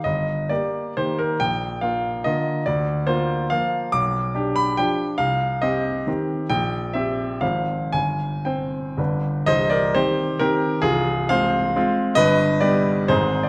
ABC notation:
X:1
M:3/4
L:1/16
Q:1/4=136
K:Bbmix
V:1 name="Grand piano"
e4 d4 c2 B2 | g4 f4 e4 | d4 c4 f4 | [K:Cm] d'6 =b2 g4 |
f4 e4 z4 | g4 =e4 f4 | a4 g6 z2 | [ce]2 [Bd]2 [Gc]4 [GB]4 |
[FA]4 [cf]6 z2 | [=Be]4 [Bd]4 [Ac]3 d |]
V:2 name="Grand piano"
G,,,4 [B,G]4 [E,B,G]4 | B,,,4 [B,F]4 [D,B,F]4 | D,,4 [B,F]4 [F,B,F]4 | [K:Cm] =B,,,4 [DG]4 [F,DG]4 |
C,,4 [CG]4 [E,CG]4 | B,,,4 [CG]4 [A,,,F,Cc]4 | G,,,4 [Cc]4 [G,,,D,D=B]4 | [C,,,C,,]4 [E,C]4 [E,C]4 |
[C,,,C,,]4 [A,CF]4 [A,CF]4 | [G,,,G,,]4 [G,=B,G]4 [A,,,A,,CE]4 |]